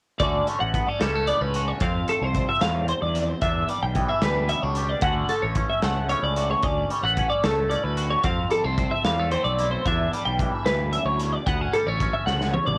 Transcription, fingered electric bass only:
0.20 0.40 D2 medium
0.61 0.81 A1 medium
1.01 1.31 C#2 medium
1.41 1.71 C#2 medium
1.81 2.01 F2 medium
2.21 2.42 C2 medium
2.62 2.92 E2 medium
3.02 3.33 E2 medium
3.42 3.62 E2 medium
3.83 4.03 B1 medium
4.22 4.53 D2 medium
4.63 4.94 C#2 medium
5.02 5.23 D2 medium
5.43 5.63 A1 medium
5.82 6.13 C#2 medium
6.22 6.54 C#2 medium
6.63 6.84 D2 medium
7.03 7.24 A1 medium
7.44 7.75 C#2 medium
7.84 8.15 D2 medium
8.24 8.45 F2 medium
8.64 8.85 C2 medium
9.04 9.35 E2 medium
9.44 9.76 B1 medium
9.85 10.06 E2 loud
10.26 10.47 B1 medium
10.65 10.97 D2 medium
11.05 11.36 D2 medium
11.47 11.67 D2 medium
11.87 12.07 A1 medium
12.27 12.58 C#2 medium
12.67 12.78 A1 medium

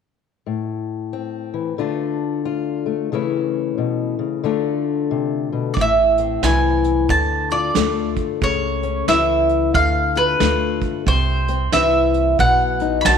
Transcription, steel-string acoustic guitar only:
0.46 1.79 A2 soft
1.13 1.76 C4 soft
1.54 1.76 E3 soft
1.78 3.11 D3 soft
1.78 2.85 A3 soft
1.78 3.09 D4 soft
1.78 2.44 F4 soft
2.45 3.09 F4 soft
2.86 3.13 A3 soft
3.12 3.77 C#3 soft
3.12 4.42 E3 soft
3.12 4.42 A3 soft
3.12 4.42 C#4 soft
3.12 4.45 E4 soft
3.78 4.18 B2 soft
4.19 4.44 C#3 soft
4.44 5.76 D3 medium
4.44 5.74 A3 soft
4.44 5.74 D4 soft
4.44 5.75 F4 soft
5.11 5.52 C3 medium
5.53 5.77 B2 soft
5.78 7.10 A2 medium
6.19 7.07 C4 soft
6.44 7.07 E3 soft
6.44 7.10 E4 soft
7.10 8.42 D3 medium
7.52 7.76 F4 soft
7.76 10.39 A3 medium
7.76 8.39 F4 medium
8.42 9.08 C#3 medium
8.83 9.72 C#4 soft
9.08 9.71 E3 soft
9.08 9.74 E4 medium
9.75 11.07 D3 medium
10.16 10.39 F4 medium
10.40 11.03 A3 medium
10.40 11.04 F4 medium
11.06 11.73 C3 medium
11.49 12.37 C4 medium
11.73 12.36 E3 medium
11.73 12.40 E4 medium
12.39 13.06 B2 medium
12.81 13.18 D#4 soft
13.06 13.18 D#3 medium
13.06 13.18 F#4 medium

